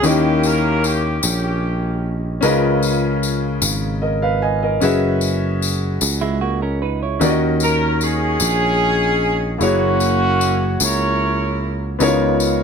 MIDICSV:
0, 0, Header, 1, 6, 480
1, 0, Start_track
1, 0, Tempo, 797978
1, 21, Time_signature, 6, 3, 24, 8
1, 7599, End_track
2, 0, Start_track
2, 0, Title_t, "Grand piano"
2, 0, Program_c, 0, 0
2, 0, Control_c, 0, 64, 127
2, 11, Note_on_c, 0, 61, 69
2, 18, Note_on_c, 0, 64, 60
2, 23, Note_on_c, 0, 51, 69
2, 23, Note_on_c, 0, 67, 64
2, 29, Control_c, 0, 64, 0
2, 31, Note_on_c, 0, 70, 61
2, 35, Note_on_c, 0, 75, 74
2, 143, Control_c, 0, 64, 127
2, 718, Note_off_c, 0, 51, 0
2, 1432, Note_off_c, 0, 61, 0
2, 1435, Note_off_c, 0, 64, 0
2, 1437, Note_off_c, 0, 67, 0
2, 1441, Note_off_c, 0, 70, 0
2, 1444, Note_off_c, 0, 75, 0
2, 1448, Note_on_c, 0, 61, 85
2, 1455, Note_on_c, 0, 63, 58
2, 1460, Note_on_c, 0, 70, 80
2, 1461, Note_on_c, 0, 49, 84
2, 1467, Note_on_c, 0, 71, 77
2, 1468, Control_c, 0, 64, 0
2, 1470, Note_on_c, 0, 75, 86
2, 1493, Note_on_c, 0, 65, 68
2, 1497, Note_off_c, 0, 63, 0
2, 1576, Control_c, 0, 64, 127
2, 2156, Note_off_c, 0, 49, 0
2, 2400, Note_off_c, 0, 70, 0
2, 2404, Note_off_c, 0, 71, 0
2, 2406, Note_off_c, 0, 75, 0
2, 2417, Note_on_c, 0, 75, 69
2, 2422, Note_on_c, 0, 70, 51
2, 2532, Note_off_c, 0, 75, 0
2, 2535, Note_off_c, 0, 70, 0
2, 2540, Note_on_c, 0, 77, 69
2, 2543, Note_on_c, 0, 71, 61
2, 2654, Note_off_c, 0, 77, 0
2, 2655, Note_off_c, 0, 71, 0
2, 2661, Note_on_c, 0, 80, 68
2, 2667, Note_on_c, 0, 75, 60
2, 2774, Note_off_c, 0, 80, 0
2, 2775, Note_off_c, 0, 75, 0
2, 2784, Note_on_c, 0, 75, 67
2, 2789, Note_on_c, 0, 70, 54
2, 2869, Note_off_c, 0, 61, 0
2, 2890, Note_on_c, 0, 61, 75
2, 2891, Note_off_c, 0, 65, 0
2, 2897, Note_on_c, 0, 66, 68
2, 2901, Note_on_c, 0, 68, 72
2, 2907, Note_on_c, 0, 71, 72
2, 2908, Control_c, 0, 64, 0
2, 2911, Note_on_c, 0, 76, 88
2, 3010, Note_off_c, 0, 75, 0
2, 3012, Note_off_c, 0, 70, 0
2, 3027, Control_c, 0, 64, 127
2, 4309, Note_off_c, 0, 61, 0
2, 4313, Note_off_c, 0, 66, 0
2, 4315, Note_off_c, 0, 68, 0
2, 4318, Note_off_c, 0, 71, 0
2, 4320, Note_off_c, 0, 76, 0
2, 4328, Note_on_c, 0, 61, 71
2, 4334, Note_on_c, 0, 63, 70
2, 4337, Note_on_c, 0, 51, 73
2, 4338, Note_on_c, 0, 66, 65
2, 4344, Note_on_c, 0, 70, 70
2, 4346, Control_c, 0, 64, 0
2, 4350, Note_on_c, 0, 74, 64
2, 4383, Note_off_c, 0, 74, 0
2, 4388, Note_on_c, 0, 75, 89
2, 4455, Control_c, 0, 64, 127
2, 5033, Note_off_c, 0, 51, 0
2, 5747, Note_off_c, 0, 61, 0
2, 5751, Note_off_c, 0, 63, 0
2, 5753, Note_off_c, 0, 66, 0
2, 5756, Note_off_c, 0, 70, 0
2, 5764, Note_on_c, 0, 58, 66
2, 5770, Note_on_c, 0, 64, 57
2, 5776, Note_on_c, 0, 66, 61
2, 5778, Note_off_c, 0, 75, 0
2, 5781, Note_on_c, 0, 68, 57
2, 5784, Control_c, 0, 64, 0
2, 5787, Note_on_c, 0, 73, 73
2, 5874, Control_c, 0, 64, 127
2, 7185, Note_off_c, 0, 58, 0
2, 7188, Note_off_c, 0, 64, 0
2, 7191, Note_off_c, 0, 66, 0
2, 7194, Note_off_c, 0, 68, 0
2, 7197, Note_off_c, 0, 73, 0
2, 7210, Note_on_c, 0, 59, 77
2, 7217, Note_on_c, 0, 63, 70
2, 7221, Note_on_c, 0, 64, 62
2, 7222, Note_on_c, 0, 49, 77
2, 7223, Control_c, 0, 64, 0
2, 7228, Note_on_c, 0, 70, 70
2, 7233, Note_on_c, 0, 73, 84
2, 7257, Note_off_c, 0, 64, 0
2, 7260, Note_on_c, 0, 65, 69
2, 7328, Control_c, 0, 64, 127
2, 7599, Note_off_c, 0, 49, 0
2, 7599, Note_off_c, 0, 59, 0
2, 7599, Note_off_c, 0, 63, 0
2, 7599, Note_off_c, 0, 65, 0
2, 7599, Note_off_c, 0, 70, 0
2, 7599, Note_off_c, 0, 73, 0
2, 7599, End_track
3, 0, Start_track
3, 0, Title_t, "Horn section"
3, 0, Program_c, 1, 61
3, 28, Note_on_c, 1, 67, 96
3, 31, Note_on_c, 1, 61, 84
3, 34, Note_on_c, 1, 58, 79
3, 265, Note_off_c, 1, 67, 0
3, 274, Note_on_c, 1, 70, 97
3, 507, Note_off_c, 1, 70, 0
3, 511, Note_on_c, 1, 67, 88
3, 722, Note_off_c, 1, 61, 0
3, 723, Note_off_c, 1, 58, 0
3, 746, Note_off_c, 1, 67, 0
3, 759, Note_on_c, 1, 58, 62
3, 763, Note_on_c, 1, 61, 57
3, 764, Note_on_c, 1, 67, 80
3, 1268, Note_off_c, 1, 67, 0
3, 1446, Note_off_c, 1, 58, 0
3, 1448, Note_off_c, 1, 61, 0
3, 4592, Note_on_c, 1, 70, 88
3, 4808, Note_off_c, 1, 70, 0
3, 4834, Note_on_c, 1, 61, 72
3, 4838, Note_on_c, 1, 68, 110
3, 5761, Note_off_c, 1, 61, 0
3, 5763, Note_off_c, 1, 68, 0
3, 5792, Note_on_c, 1, 66, 103
3, 5794, Note_on_c, 1, 58, 74
3, 5795, Note_on_c, 1, 61, 76
3, 6480, Note_off_c, 1, 58, 0
3, 6481, Note_off_c, 1, 61, 0
3, 6504, Note_off_c, 1, 66, 0
3, 6513, Note_on_c, 1, 73, 100
3, 6516, Note_on_c, 1, 64, 74
3, 6516, Note_on_c, 1, 70, 77
3, 7044, Note_off_c, 1, 73, 0
3, 7202, Note_off_c, 1, 64, 0
3, 7202, Note_off_c, 1, 70, 0
3, 7599, End_track
4, 0, Start_track
4, 0, Title_t, "Clean electric guitar"
4, 0, Program_c, 2, 27
4, 3738, Note_on_c, 2, 64, 71
4, 3742, Note_on_c, 2, 56, 62
4, 3852, Note_off_c, 2, 64, 0
4, 3854, Note_off_c, 2, 56, 0
4, 3857, Note_on_c, 2, 66, 83
4, 3863, Note_on_c, 2, 58, 72
4, 3972, Note_off_c, 2, 66, 0
4, 3975, Note_off_c, 2, 58, 0
4, 3984, Note_on_c, 2, 70, 83
4, 3989, Note_on_c, 2, 61, 66
4, 4095, Note_off_c, 2, 70, 0
4, 4098, Note_off_c, 2, 61, 0
4, 4102, Note_on_c, 2, 71, 75
4, 4106, Note_on_c, 2, 63, 69
4, 4214, Note_off_c, 2, 71, 0
4, 4216, Note_off_c, 2, 63, 0
4, 4226, Note_on_c, 2, 73, 67
4, 4230, Note_on_c, 2, 64, 54
4, 4450, Note_off_c, 2, 73, 0
4, 4452, Note_off_c, 2, 64, 0
4, 7599, End_track
5, 0, Start_track
5, 0, Title_t, "Picked electric bass"
5, 0, Program_c, 3, 34
5, 21, Note_on_c, 3, 39, 107
5, 717, Note_off_c, 3, 39, 0
5, 744, Note_on_c, 3, 34, 96
5, 1438, Note_off_c, 3, 34, 0
5, 1463, Note_on_c, 3, 37, 100
5, 2157, Note_off_c, 3, 37, 0
5, 2177, Note_on_c, 3, 32, 99
5, 2874, Note_off_c, 3, 32, 0
5, 2899, Note_on_c, 3, 30, 95
5, 3595, Note_off_c, 3, 30, 0
5, 3620, Note_on_c, 3, 37, 89
5, 4314, Note_off_c, 3, 37, 0
5, 4336, Note_on_c, 3, 39, 109
5, 5032, Note_off_c, 3, 39, 0
5, 5057, Note_on_c, 3, 34, 92
5, 5753, Note_off_c, 3, 34, 0
5, 5779, Note_on_c, 3, 30, 101
5, 6473, Note_off_c, 3, 30, 0
5, 6501, Note_on_c, 3, 37, 87
5, 7194, Note_off_c, 3, 37, 0
5, 7220, Note_on_c, 3, 37, 110
5, 7599, Note_off_c, 3, 37, 0
5, 7599, End_track
6, 0, Start_track
6, 0, Title_t, "Drums"
6, 21, Note_on_c, 9, 54, 55
6, 81, Note_off_c, 9, 54, 0
6, 261, Note_on_c, 9, 54, 52
6, 321, Note_off_c, 9, 54, 0
6, 505, Note_on_c, 9, 54, 55
6, 565, Note_off_c, 9, 54, 0
6, 739, Note_on_c, 9, 54, 94
6, 799, Note_off_c, 9, 54, 0
6, 1459, Note_on_c, 9, 54, 57
6, 1519, Note_off_c, 9, 54, 0
6, 1700, Note_on_c, 9, 54, 53
6, 1760, Note_off_c, 9, 54, 0
6, 1943, Note_on_c, 9, 54, 53
6, 2003, Note_off_c, 9, 54, 0
6, 2176, Note_on_c, 9, 54, 94
6, 2236, Note_off_c, 9, 54, 0
6, 2896, Note_on_c, 9, 54, 52
6, 2956, Note_off_c, 9, 54, 0
6, 3135, Note_on_c, 9, 54, 50
6, 3195, Note_off_c, 9, 54, 0
6, 3383, Note_on_c, 9, 54, 55
6, 3443, Note_off_c, 9, 54, 0
6, 3615, Note_on_c, 9, 54, 97
6, 3675, Note_off_c, 9, 54, 0
6, 4337, Note_on_c, 9, 54, 55
6, 4397, Note_off_c, 9, 54, 0
6, 4572, Note_on_c, 9, 54, 49
6, 4632, Note_off_c, 9, 54, 0
6, 4817, Note_on_c, 9, 54, 54
6, 4877, Note_off_c, 9, 54, 0
6, 5051, Note_on_c, 9, 54, 91
6, 5111, Note_off_c, 9, 54, 0
6, 5779, Note_on_c, 9, 54, 53
6, 5839, Note_off_c, 9, 54, 0
6, 6016, Note_on_c, 9, 54, 55
6, 6077, Note_off_c, 9, 54, 0
6, 6262, Note_on_c, 9, 54, 57
6, 6322, Note_off_c, 9, 54, 0
6, 6497, Note_on_c, 9, 54, 93
6, 6557, Note_off_c, 9, 54, 0
6, 7219, Note_on_c, 9, 54, 56
6, 7280, Note_off_c, 9, 54, 0
6, 7459, Note_on_c, 9, 54, 54
6, 7519, Note_off_c, 9, 54, 0
6, 7599, End_track
0, 0, End_of_file